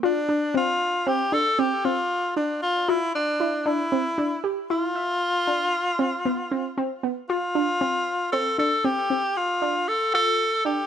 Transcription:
X:1
M:7/4
L:1/8
Q:1/4=116
K:Dm
V:1 name="Tenor saxophone"
D2 F2 G A G F2 D F E D2 | E3 z F8 z2 | F4 A A G2 F2 A A2 G |]
V:2 name="Synth arpeggio sound"
F D C2 C D C C2 D2 F2 E | D C D G E e2 D2 C =B, C C B, | F D C2 C D C C2 D2 F2 D |]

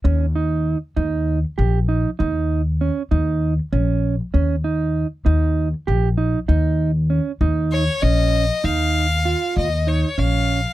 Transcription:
X:1
M:7/8
L:1/8
Q:1/4=98
K:Ebmix
V:1 name="Violin"
z6 z | z6 z | z6 z | z4 d e2 |
f3 e d f2 |]
V:2 name="Clean electric guitar"
D E2 E2 G E | E2 D E2 D2 | D E2 E2 G E | E2 D E2 D2 |
E2 F2 E D2 |]
V:3 name="Upright bass" clef=bass
E,,3 E,,2 B,,,2 | E,,3 E,,2 B,,,2 | E,,3 E,,2 B,,,2 | E,,3 E,,2 B,,,2 |
E,,3 E,,2 B,,,2 |]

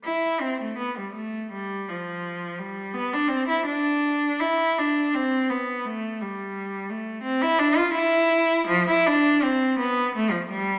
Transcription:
X:1
M:3/4
L:1/16
Q:1/4=84
K:Gmix
V:1 name="Cello"
E2 C A, B, G, A,2 G,2 F,2- | F,2 G,2 B, D C E D4 | E2 D2 C2 B,2 A,2 G,2- | G,2 A,2 C E D F E4 |
[K:Ddor] F, E D2 C2 B,2 A, F, G,2 |]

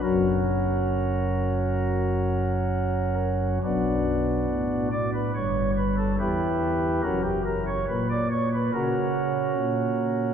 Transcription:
X:1
M:4/4
L:1/16
Q:1/4=71
K:F#phr
V:1 name="Pipe organ"
^A12- A2 z2 | [B,DF]6 d B c2 B A [EGB]4 | [CF^A] G A c B d c B [CFA]8 |]
V:2 name="Pipe organ" clef=bass
[F,,,F,,F,CF]16 | [B,,,B,,]4 A,,4 [G,,,G,,]4 E,,4 | [F,,,F,,]4 ^A,,4 C,4 A,,4 |]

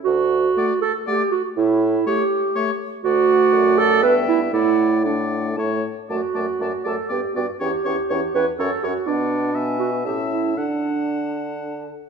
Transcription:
X:1
M:3/4
L:1/8
Q:1/4=120
K:D
V:1 name="Flute"
z2 f2 f2 | z2 e2 e2 | f4 g2 | f2 f2 a z |
a a a a g g | g g g g f f | f2 ^g2 a2 | a4- a z |]
V:2 name="Oboe"
z2 d2 d2 | z2 c2 c2 | d4 e2 | d2 d2 c z |
d d d d d d | c c c c c c | d2 e2 e2 | f4- f z |]
V:3 name="Clarinet"
F3 A G F | E2 G3 z | F3 A B E | E2 D2 z2 |
F3 A G F | G3 B A F | D3 F G E | D4 z2 |]
V:4 name="French horn"
z2 A,2 A,2 | z2 A,2 A,2 | A,4 B,2 | A,2 A,2 A, z |
A, A, A, A, B, B, | C C C C C C | B,2 B,2 C2 | D4- D z |]
V:5 name="Bassoon" clef=bass
D,,2 z4 | A,,2 z4 | D,,2 F,,2 G,,2 | A,,4 A,, z |
F,, F,, F,, F,, G,, G,, | E,, E,, E,, E,, F,, F,, | B,,4 A,,2 | D,4- D, z |]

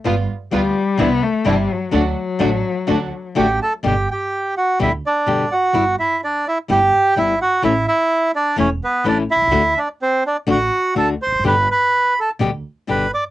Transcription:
X:1
M:4/4
L:1/16
Q:1/4=126
K:G
V:1 name="Bandoneon"
z16 | z12 [Gg]2 [Aa]2 | [Gg]2 [Gg]4 [Ff]2 [Ee]2 [Dd]4 [Ff]2- | [Ff]2 [Ee]2 [Dd]2 [Ee]2 [Gg]4 [Ee]2 [Ff]2 |
[Ee]2 [Ee]4 [Dd]2 [^C^c]2 [B,B]2 [Dd]2 [Ee]2- | [Ee]2 [Dd]2 [Cc]2 [Dd]2 [Ff]4 [Aa]2 [cc']2 | [Bb]2 [Bb]4 [Aa]2 z4 [Bb]2 [dd']2 |]
V:2 name="String section"
[G,B,=F]2 z2 [G,B,F]2 z2 [CDE]2 z2 [CDE]2 z2 | [A,DF]2 z2 [A,DF]2 z2 [A,DF]2 z2 [A,DF]2 z2 | z16 | z16 |
z16 | z16 | z16 |]
V:3 name="Nylon-string guitar"
[G,B,=F]2 z2 [G,B,F]2 z2 [C,E,G,DE]2 z2 [C,E,G,DE]2 z2 | [D,A,DF]2 z2 [D,A,DF]2 z2 [D,A,DF]2 z2 [D,A,DF]2 z2 | [B,,D,G,B,G]2 z6 [B,,D,G,B,G]2 z2 [B,,D,G,B,G]2 z2 | [G,B,E]2 z6 [G,B,E]2 z2 [G,B,E]2 z2 |
[E,A,^CE]2 z6 [E,A,CE]2 z2 [E,A,CE]2 z2 | [D,A,DF]2 z6 [D,A,DF]2 z2 [D,A,DF]2 z2 | [B,,D,G,B,G]2 z6 [B,,D,G,B,G]2 z2 [B,,D,G,B,G]2 z2 |]
V:4 name="Cello" clef=bass
z4 G,4 B,2 A,2 G,2 F,2 | F,12 z4 | z16 | z16 |
z16 | z16 | z16 |]
V:5 name="Upright bass" clef=bass
G,,,3/2 z2 z/2 D,,3/2 z2 z/2 C,,3/2 z2 z/2 G,,,3/2 z2 z/2 | D,,3/2 z2 z/2 A,,,3/2 z2 z/2 D,,3/2 z2 z/2 A,,,3/2 z2 z/2 | G,,,3/2 z6 z/2 D,,3/2 z2 z/2 G,,,3/2 z2 z/2 | G,,,3/2 z6 z/2 G,,,3/2 z2 z/2 G,,,3/2 z2 z/2 |
A,,,3/2 z6 z/2 E,,,3/2 z2 z/2 A,,,3/2 z B,,,/2 C,,/2 ^C,,/2 | D,,3/2 z6 z/2 A,,,3/2 z2 z/2 D,,3/2 z E,,,/2 =F,,,/2 ^F,,,/2 | G,,,3/2 z6 z/2 D,,3/2 z2 z/2 G,,,3/2 z2 z/2 |]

